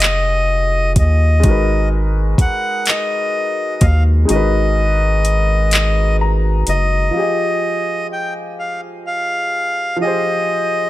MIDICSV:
0, 0, Header, 1, 5, 480
1, 0, Start_track
1, 0, Key_signature, -4, "minor"
1, 0, Tempo, 952381
1, 724, Time_signature, 6, 3, 24, 8
1, 5492, End_track
2, 0, Start_track
2, 0, Title_t, "Accordion"
2, 0, Program_c, 0, 21
2, 0, Note_on_c, 0, 75, 113
2, 470, Note_off_c, 0, 75, 0
2, 499, Note_on_c, 0, 75, 88
2, 951, Note_off_c, 0, 75, 0
2, 1216, Note_on_c, 0, 78, 111
2, 1455, Note_on_c, 0, 75, 88
2, 1457, Note_off_c, 0, 78, 0
2, 1926, Note_on_c, 0, 77, 88
2, 1944, Note_off_c, 0, 75, 0
2, 2034, Note_off_c, 0, 77, 0
2, 2172, Note_on_c, 0, 75, 96
2, 3108, Note_off_c, 0, 75, 0
2, 3373, Note_on_c, 0, 75, 106
2, 4068, Note_off_c, 0, 75, 0
2, 4096, Note_on_c, 0, 79, 98
2, 4201, Note_off_c, 0, 79, 0
2, 4333, Note_on_c, 0, 77, 92
2, 4439, Note_off_c, 0, 77, 0
2, 4571, Note_on_c, 0, 77, 114
2, 5027, Note_off_c, 0, 77, 0
2, 5050, Note_on_c, 0, 75, 118
2, 5492, Note_off_c, 0, 75, 0
2, 5492, End_track
3, 0, Start_track
3, 0, Title_t, "Grand piano"
3, 0, Program_c, 1, 0
3, 0, Control_c, 1, 64, 127
3, 0, Note_on_c, 1, 53, 58
3, 0, Note_on_c, 1, 65, 50
3, 0, Note_on_c, 1, 67, 50
3, 0, Note_on_c, 1, 68, 55
3, 0, Note_on_c, 1, 77, 66
3, 696, Note_off_c, 1, 53, 0
3, 701, Note_off_c, 1, 65, 0
3, 705, Note_on_c, 1, 56, 60
3, 709, Note_off_c, 1, 67, 0
3, 716, Note_off_c, 1, 68, 0
3, 719, Note_on_c, 1, 63, 45
3, 721, Note_off_c, 1, 77, 0
3, 731, Control_c, 1, 64, 0
3, 733, Note_on_c, 1, 66, 50
3, 748, Note_on_c, 1, 70, 56
3, 760, Note_on_c, 1, 71, 59
3, 823, Control_c, 1, 64, 127
3, 2134, Note_off_c, 1, 56, 0
3, 2142, Note_off_c, 1, 63, 0
3, 2143, Note_on_c, 1, 56, 52
3, 2148, Note_off_c, 1, 66, 0
3, 2156, Note_off_c, 1, 70, 0
3, 2156, Note_on_c, 1, 63, 51
3, 2162, Note_off_c, 1, 71, 0
3, 2168, Note_on_c, 1, 66, 54
3, 2183, Note_on_c, 1, 70, 49
3, 2197, Note_on_c, 1, 71, 64
3, 3131, Note_on_c, 1, 82, 66
3, 3351, Note_off_c, 1, 82, 0
3, 3373, Note_on_c, 1, 75, 66
3, 3574, Note_off_c, 1, 56, 0
3, 3580, Note_off_c, 1, 63, 0
3, 3584, Note_on_c, 1, 53, 54
3, 3586, Note_off_c, 1, 66, 0
3, 3592, Note_off_c, 1, 75, 0
3, 3594, Note_off_c, 1, 70, 0
3, 3598, Note_on_c, 1, 65, 51
3, 3600, Note_off_c, 1, 71, 0
3, 3610, Control_c, 1, 64, 0
3, 3613, Note_on_c, 1, 67, 52
3, 3624, Note_on_c, 1, 68, 53
3, 3638, Note_on_c, 1, 75, 59
3, 3711, Control_c, 1, 64, 127
3, 5014, Note_off_c, 1, 53, 0
3, 5021, Note_off_c, 1, 65, 0
3, 5022, Note_on_c, 1, 53, 64
3, 5028, Note_off_c, 1, 67, 0
3, 5034, Note_off_c, 1, 68, 0
3, 5035, Note_on_c, 1, 65, 51
3, 5041, Note_off_c, 1, 75, 0
3, 5049, Note_on_c, 1, 67, 52
3, 5060, Note_on_c, 1, 68, 54
3, 5075, Note_on_c, 1, 72, 67
3, 5492, Note_off_c, 1, 53, 0
3, 5492, Note_off_c, 1, 65, 0
3, 5492, Note_off_c, 1, 67, 0
3, 5492, Note_off_c, 1, 68, 0
3, 5492, Note_off_c, 1, 72, 0
3, 5492, End_track
4, 0, Start_track
4, 0, Title_t, "Analog synth bass"
4, 0, Program_c, 2, 38
4, 0, Note_on_c, 2, 29, 95
4, 488, Note_on_c, 2, 39, 92
4, 496, Note_off_c, 2, 29, 0
4, 729, Note_on_c, 2, 32, 91
4, 737, Note_off_c, 2, 39, 0
4, 1187, Note_off_c, 2, 32, 0
4, 1203, Note_on_c, 2, 39, 48
4, 1251, Note_off_c, 2, 39, 0
4, 1927, Note_on_c, 2, 39, 98
4, 2146, Note_off_c, 2, 39, 0
4, 2169, Note_on_c, 2, 32, 95
4, 3347, Note_off_c, 2, 32, 0
4, 3367, Note_on_c, 2, 30, 92
4, 3586, Note_off_c, 2, 30, 0
4, 5492, End_track
5, 0, Start_track
5, 0, Title_t, "Drums"
5, 1, Note_on_c, 9, 42, 59
5, 15, Note_on_c, 9, 39, 100
5, 52, Note_off_c, 9, 42, 0
5, 65, Note_off_c, 9, 39, 0
5, 483, Note_on_c, 9, 42, 74
5, 485, Note_on_c, 9, 36, 92
5, 534, Note_off_c, 9, 42, 0
5, 535, Note_off_c, 9, 36, 0
5, 723, Note_on_c, 9, 42, 74
5, 725, Note_on_c, 9, 36, 110
5, 774, Note_off_c, 9, 42, 0
5, 776, Note_off_c, 9, 36, 0
5, 1201, Note_on_c, 9, 36, 93
5, 1203, Note_on_c, 9, 42, 66
5, 1251, Note_off_c, 9, 36, 0
5, 1254, Note_off_c, 9, 42, 0
5, 1439, Note_on_c, 9, 42, 64
5, 1453, Note_on_c, 9, 39, 97
5, 1490, Note_off_c, 9, 42, 0
5, 1503, Note_off_c, 9, 39, 0
5, 1920, Note_on_c, 9, 42, 69
5, 1923, Note_on_c, 9, 36, 96
5, 1970, Note_off_c, 9, 42, 0
5, 1973, Note_off_c, 9, 36, 0
5, 2161, Note_on_c, 9, 42, 74
5, 2212, Note_off_c, 9, 42, 0
5, 2645, Note_on_c, 9, 42, 57
5, 2695, Note_off_c, 9, 42, 0
5, 2880, Note_on_c, 9, 42, 60
5, 2893, Note_on_c, 9, 39, 101
5, 2930, Note_off_c, 9, 42, 0
5, 2944, Note_off_c, 9, 39, 0
5, 3360, Note_on_c, 9, 42, 69
5, 3410, Note_off_c, 9, 42, 0
5, 5492, End_track
0, 0, End_of_file